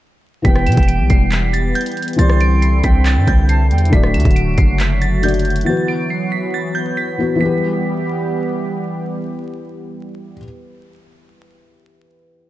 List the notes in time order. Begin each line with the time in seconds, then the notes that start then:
0.42 E1 E3 G3 B3 G4 G5 B6, kick, closed hi-hat
0.47 B4
0.56 cross-stick
0.67 B2 E7, closed hi-hat
0.72 closed hi-hat
0.77 E1, kick, closed hi-hat
0.83 closed hi-hat
0.88 D7, closed hi-hat
0.99 B1
1.10 E1 C7, kick, closed hi-hat
1.32 B6, clap, closed hi-hat
1.53 A6, closed hi-hat
1.75 G6, closed hi-hat
1.81 closed hi-hat
1.86 closed hi-hat
1.92 closed hi-hat
1.97 closed hi-hat
2.02 closed hi-hat
2.08 closed hi-hat
2.13 E3, closed hi-hat
2.18 C2 D3 G3 C4 E4 G4 D5 C6 A6, closed hi-hat
2.30 cross-stick
2.41 D7, closed hi-hat
2.62 C7, closed hi-hat
2.84 C2 G5 B6, kick, closed hi-hat
3.06 A6, clap, closed hi-hat
3.17 G2
3.27 C2 G6, kick, closed hi-hat
3.49 A5 C7, closed hi-hat
3.71 E2 G5, closed hi-hat, open hi-hat
3.78 closed hi-hat
3.85 closed hi-hat
3.90 D1 D3 F#3 A3 F#4 B6, kick, closed hi-hat
3.95 D5
4.03 cross-stick
4.14 D2 E7, closed hi-hat
4.20 closed hi-hat
4.25 D1, kick, closed hi-hat
4.31 closed hi-hat
4.36 D7, closed hi-hat
4.58 F#1 C7, kick, closed hi-hat
4.80 B6, clap, closed hi-hat
5.02 A6, closed hi-hat
5.22 D3 A3 F#4 D5 G6, closed hi-hat
5.28 closed hi-hat
5.34 closed hi-hat
5.39 closed hi-hat
5.45 closed hi-hat
5.50 closed hi-hat
5.56 closed hi-hat
5.61 E3, closed hi-hat
5.66 E3 F#3 B3 F#4 B4 A6
5.88 D7
6.10 C7
6.32 B6
6.54 A6
6.75 G6
6.97 B6
7.18 E3 B3 F#4 B4
7.35 E3 B3
7.40 E3 G3 B3 G4 B6
7.46 B4